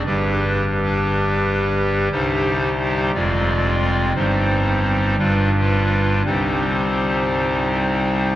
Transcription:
pipe organ
0.06 G1 G2 G3 D4 G4 B4
2.12 C2 C3 G3 D#4 G4 C5
3.14 F1 F2 G#3 C4 F4 D5
4.16 G1 G2 G3 C4 D#4 C5
5.19 G1 G2 G3 D4 F4 B4
6.26 C2 C3 G3 C4 D#4 C5

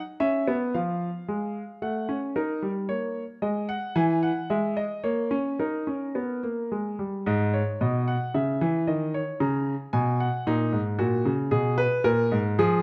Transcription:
grand piano
0.20 C#4 E5
0.48 B3
0.74 F3 F5
1.28 G#3
1.82 A3 F#5
2.09 C#4
2.36 D#4 A#4
2.62 G3
2.89 A#3 C#5
3.42 G#3 D#5
3.69 F#5
3.96 E3 G#5
4.23 F#5
4.50 G#3 E5
4.77 D#5
5.04 A#3 C#5
5.31 C#4
5.59 D#4 A#4
5.87 C#4
6.15 B3
6.43 A#3
6.72 G#3
6.99 G3
7.26 G#2 D#5
7.54 C#5
7.81 B2 D#5
8.08 F#5
8.34 C#3 E5
8.61 E3
8.87 D#3 D#5
9.14 C#5
9.40 C#3 A#5
9.93 B2 G#5
10.20 F#5
10.47 A#2 D#4
10.73 G#2
10.99 A#2 F#4
11.25 C#3
11.51 B2 G#4
11.78 B4
12.04 A#2 A#4
12.32 G#2
12.59 F3 G#4

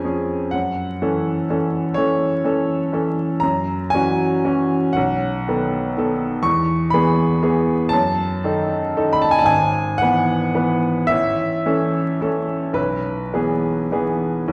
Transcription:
grand piano
Already playing: F2 F3 C#4 G#4 G#5
0.05 F3 C#4 G#4
0.51 F#2 F#5
1.02 E3 C#4 A4
1.50 E3 C#4 A4
1.94 E3 C#4 A4 C#5
2.45 E3 C#4 A4
2.93 E3 C#4 A4
3.40 F#2 A#5
3.90 E3 G#5
3.94 C#4 F#4
4.45 E3 C#4 F#4
4.93 B1 F#5
5.48 D#3 B3 A4
5.97 D#3 B3 A4
6.43 E2 C#6
6.90 E3 B3 G#4 B5
7.43 E3 B3 G#4
7.89 F#2 A5
8.44 D#3 D#4 A4
8.97 D#3 D#4 A4
9.13 B5
9.22 A5
9.31 G#5
9.39 A5
9.43 G#1 G#5
9.98 E3 B3 F#5
10.02 B4
10.55 E3 B3 B4
11.07 A1 E5
11.66 E3 C#4 A4
12.21 E3 C#4 A4
12.73 B1 B4
13.34 E3 B3 G#4
13.92 E3 B3 G#4
14.48 B1

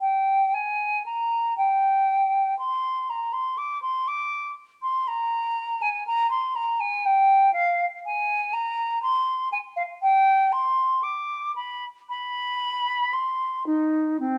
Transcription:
flute
0.00 G5
0.54 G#5
1.06 A#5
1.57 G5
2.58 C6
3.09 A#5
3.32 C6
3.57 D6
3.82 C6
4.07 D6
4.82 C6
5.07 A#5
5.81 G#5
6.07 A#5
6.30 C6
6.55 A#5
6.80 G#5
7.05 G5
7.53 F5
8.05 G#5
8.53 A#5
9.02 C6
9.52 G#5
9.76 F5
10.02 G5
10.52 C6
11.03 D6
11.55 B5
12.08 B5
13.13 C6
13.66 D#4
14.19 C4

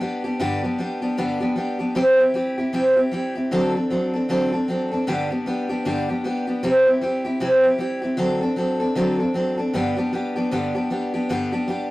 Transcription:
steel-string acoustic guitar
0.01 G3 B3 D4 G4
0.24 G3 B3 D4 G4
0.40 G2 D3 G3 B3 D4 G4
0.63 G3 B3 D4 G4
0.78 G3 B3 D4 G4
1.02 G3 B3 D4 G4
1.18 G2 D3 G3 B3 D4 G4
1.40 G3 B3 D4 G4
1.56 G3 B3 D4 G4
1.79 G3 B3 D4 G4
1.95 C3 G3 C4 E4 G4
2.18 C4 E4 G4
2.34 G3 C4 E4 G4
2.58 C4 E4 G4
2.73 C3 G3 C4 E4 G4
2.96 C4 E4 G4
3.12 G3 C4 E4 G4
3.35 C4 E4 G4
3.51 D3 F#3 C4 D4 A4
3.75 C4 D4 A4
3.90 F#3 C4 D4 A4
4.13 C4 D4 A4
4.29 D3 F#3 C4 D4 A4
4.52 C4 D4 A4
4.68 F#3 C4 D4 A4
4.92 C4 D4 A4
5.07 G2 D3 G3 B3 D4 G4
5.30 G3 B3 D4 G4
5.46 G3 B3 D4 G4
5.69 G3 B3 D4 G4
5.85 G2 D3 G3 B3 D4 G4
6.09 G3 B3 D4 G4
6.24 G3 B3 D4 G4
6.47 G3 B3 D4 G4
6.63 C3 G3 C4 E4 G4
6.86 C4 E4 G4
7.01 G3 C4 E4 G4
7.25 C4 E4 G4
7.40 C3 G3 C4 E4 G4
7.63 C4 E4 G4
7.78 G3 C4 E4 G4
8.02 C4 E4 G4
8.17 D3 F#3 C4 D4 A4
8.41 C4 D4 A4
8.56 F#3 C4 D4 A4
8.80 C4 D4 A4
8.95 D3 F#3 C4 D4 A4
9.19 C4 D4 A4
9.34 F#3 C4 D4 A4
9.58 C4 D4 A4
9.73 G2 D3 G3 B3 D4 G4
9.97 G3 B3 D4 G4
10.13 G3 B3 D4 G4
10.36 G3 B3 D4 G4
10.51 G2 D3 G3 B3 D4 G4
10.75 G3 B3 D4 G4
10.90 G3 B3 D4 G4
11.14 G3 B3 D4 G4
11.29 G2 D3 G3 B3 D4 G4
11.52 G3 B3 D4 G4
11.68 G3 B3 D4 G4

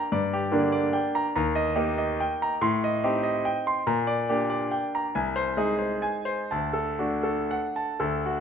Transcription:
grand piano
Already playing: A#5
0.12 G2 D5
0.33 G4
0.52 D3 A#3 D4
0.72 D5
0.93 G5
1.15 A#5
1.36 D#2 A#5
1.55 D#5
1.75 A#3 D#4 G4
1.98 D#5
2.20 G5
2.42 A#5
2.61 A2 C6
2.84 D#5
3.04 C4 D#4 G4
3.23 D#5
3.45 G5
3.67 C6
3.87 A#2 A#5
4.07 D5
4.29 A#3 D4 G4
4.50 D5
4.71 G5
4.95 A#5
5.15 C2 G#5
5.36 C5
5.57 G#3 D#4 G#4
5.79 C5
6.02 G#5
6.25 C5
6.51 D2 A5
6.73 A4
6.99 A3 D4 F#4
7.23 A4
7.51 F#5
7.76 A5
8.00 D2 A4
8.26 F#4

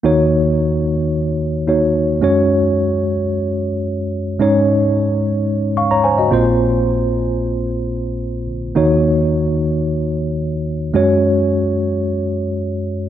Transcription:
tine electric piano
0.03 D#2 D#3 A#3 D#4 F#4 C#5
1.68 A#3 D#4 F#4 C#5
2.21 F#2 G#3 C#4 F#4 C#5
4.39 G#2 G#3 C#4 D#4 C#5
5.77 F5 C#6
5.91 C#5 A#5
6.04 C5 G#5
6.18 F#4 D#5
6.31 A#1 A#2 A#3 C4 F4 C5
8.75 D#2 D#3 A#3 D#4 F#4 C#5
10.94 F#2 G#3 C#4 F#4 C#5

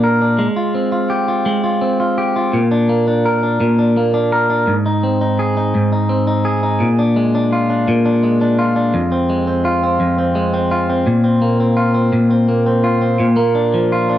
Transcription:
clean electric guitar
Already playing: A#2 A#3 D4
0.04 A#4
0.22 D4
0.39 G#3
0.56 F4
0.75 C4
0.92 F4
1.10 G4
1.28 F4
1.46 G#3
1.64 F4
1.82 C4
2.00 F4
2.18 G4
2.36 F4
2.53 A#2
2.71 D4
2.89 A#3
3.08 D4
3.25 A#4
3.43 D4
3.60 A#2
3.79 D4
3.97 A#3
4.14 D4
4.32 A#4
4.50 D4
4.67 G#2
4.86 D#4
5.03 C4
5.21 D#4
5.39 G#4
5.57 D#4
5.75 G#2
5.92 D#4
6.09 C4
6.27 D#4
6.45 G#4
6.63 D#4
6.80 A#2
6.99 D4
7.16 G#3
7.35 D4
7.53 F4
7.70 D4
7.88 A#2
8.06 D4
8.23 G#3
8.41 D4
8.59 F4
8.76 D4
8.94 F2
9.12 C4
9.30 G#3
9.47 C4
9.65 F4
9.83 C4
10.00 F2
10.18 C4
10.35 G#3
10.54 C4
10.71 F4
10.90 C4
11.07 A#2
11.24 C4
11.42 A#3
11.60 C4
11.77 F4
11.94 C4
12.13 A#2
12.31 C4
12.49 A#3
12.66 C4
12.84 F4
13.01 C4
13.20 A#2
13.36 A#3
13.55 D4
13.74 F3
13.92 F4
14.09 D4

